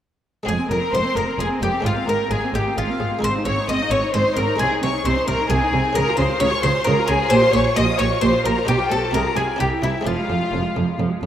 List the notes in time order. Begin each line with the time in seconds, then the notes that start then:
0.43 F1 G#3 C4 F4 G#4
0.48 F2 G#4 G#5
0.59 C4
0.69 F1 F2 G#3 A#4 A#5
0.81 C4
0.92 F1 F2 G#3 C5 C6
1.04 C4
1.15 F1 F2 G#3 A#4 A#5
1.27 C4
1.38 F1 F2 G#3 G#4 G#5
1.49 C4
1.61 F1 F2 G#3 G4 G5
1.73 C4
1.81 G#1 G#3 C4 F4
1.85 G#2 G#3 F4 F5
1.97 C4
2.07 G#1 G#2 G#3 A#4 A#5
2.20 C4
2.30 G#1 G#2 G#3 G#4 G#5
2.43 C4
2.53 G#1 G#2 G#3 G4 G5
2.66 C4
2.77 G#1 G#2 G#3 F4 F5
2.89 C4
3.00 G#1 G#2 G#3
3.12 C4
3.19 G#1 G#3 D#4 G#4
3.23 G#2 C4 C5 C6
3.35 D#4
3.45 G#1 G#2 C4 C#5 C#6
3.59 D#4
3.69 G#1 G#2 C4 D#5 D#6
3.81 D#4
3.91 G#1 G#2 C4 C#5 C#6
4.04 D#4
4.14 G#1 G#2 C4 C5 C6
4.25 D#4
4.37 G#1 G#2 C4 A#4 A#5
4.48 D#4
4.56 C2 G#3 C4 D#4 G#4
4.60 C3 G#4 G#5
4.71 D#4
4.82 C2 C3 C4 C#5 C#6
4.94 D#4
5.05 C2 C3 C4 C5 C6
5.17 D#4
5.27 C2 C3 C4 A#4 A#5
5.40 D#4
5.50 C2 C3 C4 G#4 G#5
5.62 D#4
5.72 C2 C3 C4
5.84 D#4
5.93 C#2 C#3 C#4 G#4 A#4 A#5
6.08 F4
6.17 C#2 C#3 G#4 C5 C6
6.29 F4
6.39 C#2 C#3 G#4 C#5 C#6
6.52 F4
6.62 C#2 C#3 G#4 C5 C6
6.75 F4
6.84 C#2 C#3 G#4 A#4 A#5
6.99 F4
7.08 C#2 C#3 G#4 G#5
7.21 F4
7.29 A#1 A#2 C#4 G4 C5 C6
7.43 F4
7.53 A#1 A#2 G4 C#5 C#6
7.65 F4
7.75 A#1 A#2 G4 D#5 D#6
7.87 F4
7.98 A#1 A#2 G4 C#5 C#6
8.10 F4
8.21 A#1 A#2 G4 C5 C6
8.33 F4
8.45 A#1 A#2 G4 A#4 A#5
8.56 F4
8.65 B1 B2 D4 G4 G5
8.79 F4
8.89 B1 B2 G4 A4 A5
9.01 F4
9.11 C2 C3 C4 F4 G#4 A#4
9.15 A#5
9.25 F4
9.35 C2 C3 G#4 G#5
9.46 F4
9.56 C2 C3 C4 E4 G4 G5
9.70 E4
9.82 C2 C3 E4 G4 E5
9.94 E4
10.01 G#3 C4 F4
10.05 F1 F2 F3 F4 F5
10.18 G#3
10.29 F1 F2 F3
10.41 G#3
10.52 F1 F2 F3
10.63 G#3
10.76 F1 F2 F3
10.88 G#3
10.98 F1 F2 F3
11.09 G#3
11.22 F1 F2 F3